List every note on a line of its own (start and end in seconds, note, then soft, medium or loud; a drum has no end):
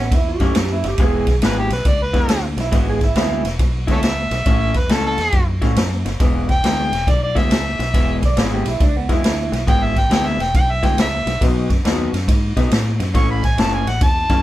0.00 0.10 A1 medium
0.00 0.12 B3 medium
0.00 0.11 C#4 medium
0.11 0.38 E2 medium
0.11 0.27 E4 medium
0.11 muted clean electric guitar stroke soft
0.11 kick loud
0.11 snare soft
0.11 ride medium
0.29 0.70 G4 medium
0.40 0.54 F#2 loud
0.40 0.55 A2 medium
0.40 0.55 A3 medium
0.40 0.55 C#4 medium
0.40 0.55 E4 medium
0.40 kick medium
0.40 snare soft
0.40 ride medium
0.55 0.82 F#2 medium
0.55 muted clean electric guitar stroke soft
0.55 snare loud
0.55 ride medium
0.72 0.85 E4 medium
0.84 0.98 F#1 medium
0.84 1.00 G4 medium
0.84 muted clean electric guitar stroke soft
0.84 snare soft
0.84 ride medium
0.98 1.25 E1 medium
0.98 1.28 E3 medium
0.98 1.28 G#3 medium
0.98 1.28 B3 medium
0.98 1.28 E4 medium
0.98 kick loud
0.98 snare soft
0.98 ride medium
1.02 1.35 G#4 loud
1.27 1.41 B1 medium
1.27 muted clean electric guitar stroke medium
1.27 kick medium
1.27 snare soft
1.27 ride medium
1.42 1.68 G#1 medium
1.42 1.71 E3 medium
1.42 1.70 G#3 loud
1.42 1.70 B3 medium
1.42 1.70 E4 medium
1.42 1.60 B4 medium
1.42 snare loud
1.42 ride medium
1.59 1.72 G4 medium
1.70 1.84 B1 medium
1.70 1.89 B4 medium
1.70 muted clean electric guitar stroke soft
1.70 snare soft
1.70 ride medium
1.85 2.12 C#2 medium
1.85 2.01 D5 medium
1.85 muted clean electric guitar stroke soft
1.85 kick loud
1.85 snare soft
1.85 ride medium
2.03 2.44 B4 medium
2.13 2.27 E2 medium
2.13 2.28 E3 medium
2.13 2.28 G#3 medium
2.13 2.28 B3 medium
2.13 2.29 E4 medium
2.13 kick medium
2.13 snare soft
2.13 ride soft
2.28 2.55 D2 medium
2.28 muted clean electric guitar stroke soft
2.28 snare loud
2.28 ride medium
2.56 2.71 B1 medium
2.56 2.73 E4 medium
2.56 muted clean electric guitar stroke medium
2.56 snare soft
2.56 ride medium
2.72 3.13 G#1 medium
2.72 3.01 E3 medium
2.72 3.01 G#3 medium
2.72 3.00 B3 medium
2.72 3.00 E4 medium
2.72 2.88 F#4 medium
2.72 kick loud
2.72 snare soft
2.72 ride medium
2.90 3.02 G#4 medium
3.01 3.45 E4 medium
3.01 muted clean electric guitar stroke soft
3.01 kick medium
3.01 snare soft
3.01 ride soft
3.15 3.42 D2 medium
3.15 3.45 E3 medium
3.15 3.44 G#3 medium
3.15 3.43 B3 medium
3.15 3.43 E4 loud
3.15 snare loud
3.15 ride medium
3.44 3.58 E1 medium
3.44 muted clean electric guitar stroke soft
3.44 snare soft
3.44 ride medium
3.59 3.86 B1 medium
3.59 muted clean electric guitar stroke soft
3.59 kick medium
3.59 snare soft
3.59 ride medium
3.87 4.02 D2 medium
3.87 4.02 E3 medium
3.87 4.02 G#3 medium
3.87 4.02 B3 medium
3.87 4.02 E4 medium
3.87 kick medium
3.87 snare soft
3.87 ride medium
3.92 4.00 A4 medium
3.92 4.00 C#5 medium
3.92 4.79 E5 medium
4.02 4.29 C#2 medium
4.02 muted clean electric guitar stroke soft
4.02 snare loud
4.02 ride medium
4.31 4.45 B1 medium
4.31 muted clean electric guitar stroke soft
4.31 snare soft
4.31 ride medium
4.46 4.73 A1 medium
4.46 4.75 A2 medium
4.46 4.75 A3 medium
4.46 4.74 C#4 medium
4.46 4.74 E4 medium
4.46 kick loud
4.46 snare soft
4.46 ride medium
4.74 4.88 E2 medium
4.74 4.95 B4 medium
4.74 muted clean electric guitar stroke medium
4.74 kick medium
4.74 snare soft
4.74 ride medium
4.89 5.16 C#2 medium
4.89 5.18 A2 medium
4.89 5.18 A3 medium
4.89 5.17 C#4 medium
4.89 5.17 E4 medium
4.89 5.06 A4 medium
4.89 snare medium
4.89 ride medium
5.06 5.48 A4 loud
5.18 5.32 E2 medium
5.18 muted clean electric guitar stroke soft
5.18 snare soft
5.18 ride medium
5.32 5.60 F#2 medium
5.32 muted clean electric guitar stroke soft
5.32 kick medium
5.32 snare soft
5.32 ride medium
5.62 5.76 A2 medium
5.62 5.75 A2 medium
5.62 5.76 A3 medium
5.62 5.76 C#4 medium
5.62 5.76 E4 medium
5.62 kick medium
5.62 snare soft
5.62 ride medium
5.76 6.03 F#2 medium
5.76 muted clean electric guitar stroke soft
5.76 snare loud
5.76 ride medium
6.05 6.19 F#1 medium
6.05 muted clean electric guitar stroke soft
6.05 snare soft
6.05 ride medium
6.20 6.60 E1 medium
6.20 6.49 E3 medium
6.20 6.48 G#3 medium
6.20 6.48 B3 medium
6.20 6.48 E4 medium
6.20 kick loud
6.20 snare soft
6.20 ride medium
6.49 7.12 G5 loud
6.49 muted clean electric guitar stroke soft
6.49 kick medium
6.49 snare soft
6.49 ride soft
6.64 6.90 D2 medium
6.64 6.92 E3 medium
6.64 6.92 G#3 medium
6.64 6.92 B3 medium
6.64 6.92 E4 medium
6.64 snare medium
6.64 ride medium
6.92 7.06 E1 medium
6.92 muted clean electric guitar stroke medium
6.92 snare soft
6.92 ride medium
7.07 7.34 B1 medium
7.07 7.23 D5 medium
7.07 muted clean electric guitar stroke medium
7.07 kick loud
7.07 snare soft
7.07 ride medium
7.24 7.39 D5 medium
7.35 7.49 D2 medium
7.35 7.50 E3 medium
7.35 7.50 G#3 medium
7.35 7.50 B3 medium
7.35 7.50 E4 medium
7.35 8.21 E5 medium
7.35 kick medium
7.35 snare soft
7.35 ride medium
7.50 7.77 C#2 loud
7.50 muted clean electric guitar stroke soft
7.50 snare loud
7.50 ride medium
7.79 7.93 B1 loud
7.79 muted clean electric guitar stroke soft
7.79 snare soft
7.79 ride medium
7.94 8.20 E1 medium
7.94 8.22 E3 medium
7.94 8.22 G#3 medium
7.94 8.22 B3 medium
7.94 8.21 E4 medium
7.94 kick loud
7.94 snare soft
7.94 ride medium
8.22 8.36 B1 medium
8.22 8.40 D5 medium
8.22 muted clean electric guitar stroke medium
8.22 kick medium
8.22 snare soft
8.22 ride medium
8.37 8.63 G#1 medium
8.37 8.66 E3 medium
8.37 8.65 G#3 medium
8.37 8.65 B3 medium
8.37 8.65 E4 loud
8.37 8.53 B4 medium
8.37 snare loud
8.37 ride medium
8.54 8.67 G4 medium
8.65 8.79 B1 medium
8.65 8.81 E4 medium
8.65 muted clean electric guitar stroke medium
8.65 snare soft
8.65 ride medium
8.80 9.07 C#2 medium
8.80 8.96 D4 medium
8.80 muted clean electric guitar stroke soft
8.80 kick loud
8.80 snare soft
8.80 ride medium
8.96 9.10 B3 medium
9.09 9.23 E2 medium
9.09 9.22 E3 medium
9.09 9.22 G#3 medium
9.09 9.22 B3 medium
9.09 9.23 E4 medium
9.09 9.59 E4 loud
9.09 kick medium
9.09 snare soft
9.09 ride medium
9.23 9.50 D2 medium
9.23 muted clean electric guitar stroke soft
9.23 snare loud
9.23 ride medium
9.52 9.66 B1 medium
9.52 muted clean electric guitar stroke soft
9.52 snare soft
9.52 ride medium
9.67 10.08 G#1 medium
9.67 9.96 E3 medium
9.67 9.96 G#3 medium
9.67 9.95 B3 medium
9.67 9.95 E4 medium
9.67 9.85 G5 medium
9.67 kick loud
9.67 snare soft
9.67 ride medium
9.84 10.00 E5 medium
9.96 10.12 G5 medium
9.96 muted clean electric guitar stroke soft
9.96 kick medium
9.96 snare soft
9.96 ride medium
10.10 10.37 D2 loud
10.10 10.39 E3 medium
10.10 10.40 G#3 medium
10.10 10.39 B3 loud
10.10 10.39 E4 medium
10.10 10.29 G5 medium
10.10 snare loud
10.10 ride medium
10.27 10.44 E5 medium
10.39 10.53 E1 medium
10.39 10.55 G5 medium
10.39 muted clean electric guitar stroke medium
10.39 snare soft
10.39 ride medium
10.54 10.81 B1 medium
10.54 10.73 G5 medium
10.54 muted clean electric guitar stroke soft
10.54 kick loud
10.54 snare soft
10.54 ride medium
10.72 10.87 E5 medium
10.83 10.97 D2 medium
10.83 10.97 E3 medium
10.83 10.97 G#3 medium
10.83 10.98 B3 medium
10.83 10.97 E4 medium
10.83 10.99 G5 medium
10.83 kick medium
10.83 snare soft
10.83 ride medium
10.97 11.24 C#2 medium
10.97 11.41 E5 medium
10.97 muted clean electric guitar stroke soft
10.97 snare loud
10.97 ride medium
11.26 11.41 B1 medium
11.26 muted clean electric guitar stroke soft
11.26 snare soft
11.26 ride medium
11.41 11.68 B1 medium
11.41 11.70 B2 medium
11.41 11.70 F#3 medium
11.41 11.69 B3 medium
11.41 11.69 D#4 medium
11.41 kick loud
11.41 snare soft
11.41 ride medium
11.70 11.83 F#2 medium
11.70 muted clean electric guitar stroke soft
11.70 kick medium
11.70 snare soft
11.70 ride medium
11.85 12.11 D#2 medium
11.85 12.13 B2 medium
11.85 12.13 F#3 medium
11.85 12.12 B3 medium
11.85 12.12 D#4 medium
11.85 snare medium
11.85 ride medium
12.13 12.27 F#2 medium
12.13 muted clean electric guitar stroke soft
12.13 snare soft
12.13 ride medium
12.28 12.54 G#2 medium
12.28 muted clean electric guitar stroke soft
12.28 kick loud
12.28 snare soft
12.28 ride medium
12.57 12.70 B2 medium
12.57 12.70 F#3 medium
12.57 12.71 B3 medium
12.57 12.71 D#4 medium
12.57 kick medium
12.57 snare soft
12.57 ride medium
12.71 12.98 A2 medium
12.71 muted clean electric guitar stroke soft
12.71 snare loud
12.71 ride medium
13.00 13.13 F#2 medium
13.00 muted clean electric guitar stroke soft
13.00 snare soft
13.00 ride medium
13.14 13.55 A1 medium
13.14 13.43 A2 medium
13.14 13.43 A3 medium
13.14 13.42 C#4 medium
13.14 13.42 E4 medium
13.14 13.30 C#6 medium
13.14 kick loud
13.14 snare soft
13.14 ride medium
13.31 13.44 B5 medium
13.43 13.58 G#5 loud
13.43 muted clean electric guitar stroke medium
13.43 kick medium
13.43 snare soft
13.43 ride medium
13.57 13.84 F#1 medium
13.57 13.86 A2 medium
13.57 13.86 A3 medium
13.57 13.86 C#4 medium
13.57 13.85 E4 loud
13.57 13.73 A5 medium
13.57 snare loud
13.57 ride medium
13.74 13.91 G#5 medium
13.86 14.00 A1 loud
13.86 14.02 F#5 medium
13.86 muted clean electric guitar stroke soft
13.86 snare soft
13.86 ride medium
14.01 14.28 E2 medium
14.01 14.42 A5 medium
14.01 muted clean electric guitar stroke soft
14.01 kick loud
14.01 snare soft
14.01 ride medium
14.29 14.42 F#2 loud
14.29 14.42 A2 medium
14.29 14.42 A3 medium
14.29 14.42 C#4 medium
14.29 14.42 E4 medium
14.29 kick medium
14.29 snare soft
14.29 ride medium